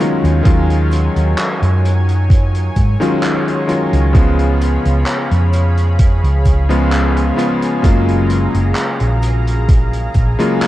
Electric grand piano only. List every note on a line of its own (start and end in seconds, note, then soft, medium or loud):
0.00 0.40 D#3 medium
0.00 0.40 F#3 medium
0.00 0.40 G#3 medium
0.00 0.40 C#4 medium
0.00 0.41 F4 medium
0.43 2.94 D#3 medium
0.43 2.94 F#3 medium
0.43 2.94 G#3 medium
0.43 2.95 C#4 medium
0.43 2.95 F4 loud
3.00 3.63 D#3 loud
3.00 3.63 F#3 medium
3.00 3.63 G#3 medium
3.00 3.63 C#4 medium
3.00 3.64 F4 loud
3.67 4.09 D#3 medium
3.67 4.09 F#3 medium
3.67 4.09 G#3 medium
3.67 4.09 C#4 medium
3.67 4.10 F4 medium
4.13 6.63 C#3 medium
4.13 6.64 F3 medium
4.13 6.64 G#3 medium
4.13 6.65 B3 medium
4.13 6.65 F4 loud
6.69 7.32 C#3 loud
6.69 7.32 F3 medium
6.69 7.33 G#3 medium
6.69 7.33 B3 medium
6.69 7.33 F4 loud
7.36 7.78 C#3 medium
7.36 7.78 F3 medium
7.36 7.78 G#3 medium
7.36 7.79 B3 medium
7.36 7.79 F4 loud
7.82 10.33 C#3 medium
7.82 10.33 F#3 medium
7.82 10.33 G#3 medium
7.82 10.34 A#3 medium
7.82 10.34 F4 loud
10.39 10.67 C#3 loud
10.39 10.67 F#3 medium
10.39 10.67 G#3 medium
10.39 10.67 A#3 medium
10.39 10.67 F4 loud